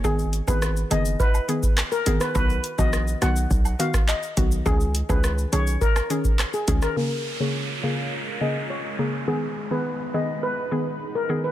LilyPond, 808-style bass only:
\new Staff \with { instrumentName = "808-style bass" } { \clef bass \time 4/4 \key bes \phrygian \tempo 4 = 104 aes,,8. aes,,8. ges,,8 r4. aes,,16 r16 | b,,8 r16 bes,,8. b,,8 b,,8 r4 b,,8 | des,8. des,8. ces,8 r4. des,16 r16 | r1 |
r1 | }